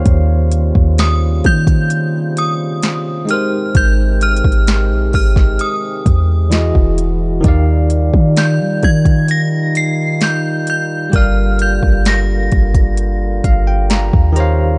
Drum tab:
HH |x-----x-----x-----x--x--x-----x-----x-----x-----|x-----x-x-x-x-----o-----x-----x-----x-----x-----|x-----x-----x-----x--x--x-----x-----x-----x-----|x-----x-----x-----x--x--x-----x-----x-----x-----|
SD |------------o-----------------------o-----------|------------o--------o--------------o-----------|------------o-----------------------o-----------|------------o-----------------------o-----------|
BD |o--------o--------o--o--------------------------|o--------o--------o--o--------o--------o--------|o--------o--------o--o--------------------------|o--------o--------o--o--------o--------o--------|